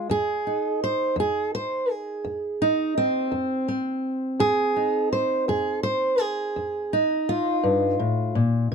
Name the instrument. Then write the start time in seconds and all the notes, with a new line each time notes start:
steel-string acoustic guitar
0.10 F2 G#4
0.47 D#4
0.84 C5
1.16 F2 G#4
1.55 C5
1.90 G#4
2.24 F2
2.62 D#4
2.98 C4
3.32 F2
3.68 C4
4.39 F2 G#4
4.76 D#4
5.13 C5
5.48 F2 G#4
5.83 C5
6.20 G#4
6.56 F2
6.93 D#4
7.29 F4
7.63 G2
7.99 A2
8.35 A#2
8.72 C3